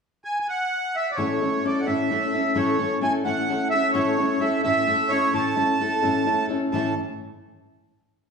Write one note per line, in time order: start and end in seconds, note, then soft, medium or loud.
0.24 0.39 G#5 medium
0.40 0.47 G#5 soft
0.49 0.96 F#5 medium
0.96 1.11 E5 medium
1.11 1.18 D5 soft
1.15 1.41 A2 medium
1.15 1.41 E3 medium
1.15 1.41 A3 soft
1.15 1.41 C#4 medium
1.15 1.41 E4 medium
1.15 1.40 A4 medium
1.15 1.64 C#5 soft
1.41 1.63 A3 soft
1.41 1.64 C#4 soft
1.41 1.64 E4 soft
1.41 1.64 A4 soft
1.64 1.86 A3 soft
1.64 1.86 C#4 soft
1.64 1.86 E4 medium
1.64 1.86 A4 medium
1.64 1.81 D5 soft
1.80 1.87 F#5 soft
1.86 2.11 A2 soft
1.86 2.11 E3 soft
1.86 2.09 A3 soft
1.86 2.10 C#4 soft
1.86 2.10 E4 soft
1.86 2.10 A4 soft
1.86 2.58 E5 medium
2.11 2.33 A3 soft
2.11 2.33 C#4 soft
2.11 2.33 E4 medium
2.11 2.33 A4 soft
2.34 2.55 A3 soft
2.34 2.55 C#4 soft
2.34 2.55 E4 soft
2.34 2.55 A4 soft
2.55 2.79 A2 medium
2.55 2.79 E3 medium
2.55 2.79 A3 medium
2.55 2.78 C#4 medium
2.55 2.78 E4 medium
2.55 2.77 A4 medium
2.55 2.99 C#5 medium
2.78 3.00 A3 soft
2.78 3.01 C#4 soft
2.78 3.02 E4 soft
2.78 3.02 A4 soft
3.01 3.24 A3 medium
3.01 3.24 C#4 medium
3.01 3.24 E4 medium
3.01 3.23 A4 medium
3.01 3.13 G#5 medium
3.25 3.49 A2 soft
3.25 3.49 E3 soft
3.25 3.48 A3 soft
3.25 3.48 C#4 soft
3.25 3.48 E4 soft
3.25 3.48 A4 soft
3.25 3.68 F#5 medium
3.49 3.71 A3 soft
3.49 3.72 C#4 medium
3.49 3.72 E4 medium
3.49 3.72 A4 medium
3.70 3.94 A4 soft
3.70 3.92 E5 medium
3.75 3.93 A3 soft
3.75 3.94 C#4 soft
3.75 3.95 E4 soft
3.92 4.18 A2 medium
3.92 4.18 E3 medium
3.92 4.18 A3 medium
3.92 4.18 C#4 medium
3.92 4.17 E4 medium
3.92 4.17 A4 medium
3.92 4.41 C#5 medium
4.18 4.38 A3 soft
4.18 4.40 C#4 soft
4.18 4.40 E4 soft
4.18 4.41 A4 soft
4.40 4.63 A3 medium
4.40 4.64 C#4 medium
4.40 4.64 E4 medium
4.40 4.63 A4 medium
4.40 4.62 E5 medium
4.63 4.88 A2 soft
4.63 4.88 E3 soft
4.63 4.85 A3 medium
4.63 4.86 C#4 soft
4.63 4.86 E4 medium
4.63 4.87 A4 medium
4.63 5.11 E5 medium
4.87 5.10 A3 soft
4.87 5.10 C#4 soft
4.87 5.10 E4 medium
4.87 5.10 A4 medium
5.09 5.32 A3 soft
5.09 5.32 C#4 soft
5.09 5.32 E4 soft
5.09 5.33 A4 soft
5.09 5.33 C#5 medium
5.33 5.57 A2 medium
5.33 5.57 E3 medium
5.33 5.56 A3 medium
5.33 5.56 C#4 medium
5.33 5.55 E4 medium
5.33 5.55 A4 medium
5.33 6.47 A5 medium
5.56 5.79 A3 soft
5.56 5.79 C#4 soft
5.56 5.80 E4 soft
5.56 5.79 A4 soft
5.80 6.02 A3 soft
5.80 6.02 C#4 medium
5.80 6.02 E4 medium
5.80 6.01 A4 medium
6.03 6.27 A2 soft
6.03 6.27 E3 medium
6.03 6.25 A3 soft
6.03 6.26 C#4 soft
6.03 6.26 E4 soft
6.03 6.26 A4 medium
6.26 6.49 A3 medium
6.26 6.49 C#4 medium
6.26 6.49 E4 medium
6.26 6.48 A4 medium
6.49 6.73 A3 soft
6.49 6.73 C#4 soft
6.49 6.73 E4 soft
6.49 6.73 A4 soft
6.72 6.92 A2 medium
6.72 6.92 E3 medium
6.72 6.92 A3 medium
6.72 6.93 C#4 medium
6.72 6.93 E4 medium
6.72 6.93 A4 medium
6.72 6.95 A5 soft